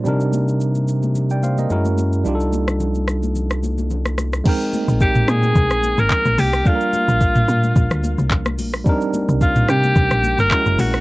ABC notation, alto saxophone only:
X:1
M:4/4
L:1/16
Q:"Swing 16ths" 1/4=109
K:Cm
V:1 name="Alto saxophone"
z16 | z16 | z4 G2 A4- A B3 G2 | F12 z4 |
z4 F2 G4- G B3 ^F2 |]